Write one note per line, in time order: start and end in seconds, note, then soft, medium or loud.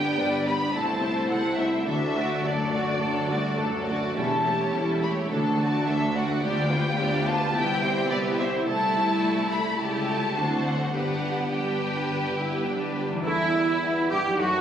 0.00 0.12 G1 medium
0.00 0.12 G2 medium
0.00 0.76 G2 medium
0.00 0.19 B3 soft
0.00 0.70 B3 soft
0.00 0.70 D4 medium
0.00 0.77 D4 soft
0.00 0.18 G4 soft
0.00 0.17 B4 soft
0.00 0.46 D5 soft
0.00 0.43 G5 medium
0.18 0.68 G1 medium
0.18 0.68 G2 medium
0.18 0.46 G3 soft
0.18 0.77 B3 soft
0.18 0.47 D4 soft
0.18 0.45 B4 soft
0.18 0.46 D5 soft
0.46 0.74 B3 soft
0.46 0.74 G4 soft
0.46 0.74 B4 soft
0.46 0.77 D5 soft
0.46 0.74 B5 medium
0.74 1.23 C2 medium
0.74 1.24 C2 medium
0.74 1.90 C3 soft
0.74 1.86 A3 medium
0.74 1.00 C4 soft
0.74 1.00 E4 soft
0.74 1.87 E4 medium
0.74 1.00 A4 soft
0.74 1.30 A5 medium
1.02 1.30 A3 soft
1.02 1.29 C4 soft
1.02 1.30 E4 soft
1.02 1.90 E4 soft
1.02 1.30 C5 soft
1.30 1.80 C2 medium
1.30 2.43 A3 soft
1.30 1.58 C4 soft
1.30 1.59 E4 soft
1.30 1.58 A4 soft
1.30 1.58 F#5 medium
1.58 1.87 A3 soft
1.58 1.87 C4 soft
1.58 1.87 E4 soft
1.58 2.72 A4 soft
1.58 1.87 C5 soft
1.58 1.87 E5 medium
1.86 2.37 D2 soft
1.86 4.19 D3 soft
1.86 2.14 F#3 soft
1.86 2.43 A3 soft
1.86 2.14 D4 soft
1.86 2.43 F#4 soft
1.86 2.14 A4 soft
1.86 2.44 E5 medium
2.16 2.45 A3 soft
2.16 3.29 F#4 soft
2.16 2.45 F#4 soft
2.16 2.44 D5 soft
2.43 2.95 D2 soft
2.43 3.27 F#2 soft
2.43 2.73 F#3 soft
2.43 3.85 A3 soft
2.43 3.59 A3 soft
2.43 2.73 D4 soft
2.43 3.85 F#4 soft
2.43 2.73 A4 soft
2.43 3.60 D5 soft
2.71 3.02 A3 soft
2.71 3.01 F#4 soft
2.71 3.02 F#4 soft
2.71 3.87 A4 soft
2.71 3.01 D5 soft
3.00 3.53 D2 soft
3.00 3.29 F#3 soft
3.00 4.19 D4 soft
3.00 3.29 D4 soft
3.00 3.28 A4 soft
3.29 3.59 G2 soft
3.29 3.60 A3 soft
3.29 3.58 F#4 soft
3.29 4.19 F#4 soft
3.29 3.60 F#4 soft
3.29 3.59 D5 soft
3.57 4.10 D2 soft
3.57 4.17 F#2 soft
3.57 3.88 F#3 soft
3.57 4.73 A3 soft
3.57 3.89 D4 soft
3.57 3.87 A4 soft
3.87 4.17 A3 soft
3.87 4.16 F#4 soft
3.87 4.17 F#4 soft
3.87 6.45 A4 soft
3.87 4.16 D5 soft
4.16 4.67 E1 soft
4.16 4.68 E2 soft
4.16 5.33 E3 soft
4.16 4.43 G3 soft
4.16 4.43 C#4 soft
4.16 5.26 C#4 soft
4.16 4.43 E4 soft
4.16 5.27 G4 soft
4.16 4.43 A4 soft
4.16 4.98 A5 medium
4.45 4.74 A3 soft
4.45 4.74 E4 soft
4.45 4.74 G4 soft
4.45 5.33 G4 soft
4.45 4.74 C#5 soft
4.74 5.24 E1 soft
4.74 5.24 E2 soft
4.74 5.02 G3 soft
4.74 5.86 A3 soft
4.74 5.02 C#4 soft
4.74 5.02 E4 soft
4.74 5.02 A4 soft
5.02 5.30 A3 soft
5.02 5.31 E4 soft
5.02 5.31 G4 soft
5.02 5.33 C#5 soft
5.02 5.31 C#5 soft
5.02 5.10 B5 medium
5.30 5.80 D2 soft
5.30 6.42 D3 soft
5.30 5.57 F#3 soft
5.30 5.57 D4 soft
5.30 6.43 D4 soft
5.30 6.42 F#4 soft
5.30 5.57 A4 soft
5.30 5.86 A5 medium
5.58 5.87 A3 soft
5.58 5.86 F#4 soft
5.58 5.87 F#4 soft
5.58 6.45 F#4 soft
5.58 5.87 D5 soft
5.86 6.36 D2 medium
5.86 6.15 F#3 soft
5.86 6.45 A3 soft
5.86 6.15 D4 soft
5.86 6.15 A4 soft
5.86 6.15 E5 medium
6.14 6.42 A3 soft
6.14 6.43 F#4 soft
6.14 6.41 D5 soft
6.14 7.25 D5 soft
6.14 6.43 F#5 medium
6.42 6.92 D2 medium
6.42 7.57 D3 soft
6.42 6.68 G3 soft
6.42 8.65 B3 medium
6.42 6.69 D4 soft
6.42 7.53 F4 soft
6.42 6.69 G4 soft
6.42 6.68 D5 soft
6.42 7.27 G5 medium
6.70 6.99 B3 soft
6.70 6.98 F4 soft
6.70 7.57 F4 soft
6.70 6.98 G4 soft
6.70 6.98 B4 soft
6.98 7.48 D2 medium
6.98 7.27 G3 soft
6.98 8.10 B3 soft
6.98 7.27 D4 soft
6.98 7.27 G4 soft
6.98 7.27 D5 soft
7.26 7.52 B3 soft
7.26 7.55 F4 soft
7.26 7.54 G4 soft
7.26 7.53 B4 soft
7.26 7.57 D5 soft
7.26 7.55 A5 medium
7.53 8.04 C2 medium
7.53 8.05 C2 medium
7.53 8.68 C3 medium
7.53 7.80 B3 medium
7.53 7.80 E4 soft
7.53 10.33 E4 medium
7.53 7.80 G4 soft
7.53 7.81 B4 soft
7.53 8.12 G5 medium
7.82 8.11 C4 soft
7.82 8.96 E4 soft
7.82 8.11 E4 soft
7.82 8.11 G4 soft
7.82 8.11 C5 soft
8.10 8.61 C2 medium
8.10 8.62 C2 medium
8.10 8.39 B3 soft
8.10 8.71 B3 soft
8.10 8.39 E4 soft
8.10 8.40 G4 soft
8.10 8.40 B4 soft
8.10 8.18 D5 medium
8.39 8.68 C4 soft
8.39 8.66 E4 soft
8.39 8.68 G4 soft
8.39 8.69 C5 soft
8.39 8.48 E5 medium
8.39 9.51 E5 soft
8.67 9.75 C2 medium
8.67 9.76 C2 medium
8.67 9.82 C3 medium
8.67 9.75 A3 medium
8.67 9.77 A3 medium
8.67 9.75 E4 medium
8.67 9.75 A4 medium
8.67 9.50 A5 medium
8.97 10.07 E4 soft
9.24 10.96 A3 soft
9.51 10.07 E5 soft
9.51 9.79 B5 medium
9.79 10.35 C#2 soft
9.79 10.35 C#2 medium
9.79 10.39 C#3 soft
9.79 10.36 G3 soft
9.79 10.35 A3 medium
9.79 10.35 E4 soft
9.79 10.36 G4 soft
9.79 10.36 A4 soft
9.79 10.65 A5 medium
10.08 10.39 E4 soft
10.08 10.39 E5 soft
10.35 10.92 D2 soft
10.35 10.93 D2 soft
10.35 10.96 D3 soft
10.35 10.76 F#3 soft
10.35 10.92 A3 soft
10.35 10.76 C4 soft
10.35 10.92 D4 soft
10.35 10.94 F#4 soft
10.35 10.94 C5 soft
10.65 11.22 D4 soft
10.65 10.97 C5 soft
10.65 10.93 F#5 medium
10.93 13.01 G1 soft
10.93 13.01 G2 soft
10.93 13.28 G2 soft
10.93 12.93 G3 soft
10.93 12.97 B3 soft
10.93 11.52 B3 soft
10.93 11.50 D4 soft
10.93 11.50 G4 soft
10.93 11.50 B4 soft
10.93 11.51 F#5 medium
11.24 12.39 D4 soft
11.51 12.67 G3 soft
11.51 12.35 D4 soft
11.51 13.02 G4 soft
11.51 13.02 B4 soft
11.51 12.68 G5 soft
11.81 12.97 B4 soft
12.10 13.28 D3 soft
12.39 13.28 D4 soft
12.39 12.68 E4 soft
12.68 13.12 G3 soft
12.68 13.25 D4 soft
12.98 13.21 B4 soft
13.09 14.33 E2 soft
13.13 14.35 G3 soft
13.18 14.37 E4 soft
13.22 14.06 E2 medium
13.22 14.06 E3 medium
13.22 14.06 E4 medium
13.22 14.07 E4 medium
13.22 14.13 E4 medium
13.22 14.07 E4 medium
13.22 14.39 B4 soft
13.27 13.56 A3 medium
13.27 14.07 E4 medium
13.55 13.82 G3 soft
13.83 14.41 B3 medium
14.10 14.18 G2 medium
14.10 14.39 G3 medium
14.10 14.18 G4 medium
14.10 14.42 G4 medium
14.10 14.39 G4 medium
14.10 14.38 G4 medium
14.21 14.61 F#2 soft
14.26 14.61 F#3 soft
14.30 14.61 D#4 soft
14.35 14.61 F#2 medium
14.35 14.61 F#3 medium
14.35 14.61 F#4 medium
14.35 14.61 A4 soft
14.40 14.61 A3 medium
14.40 14.61 F#4 medium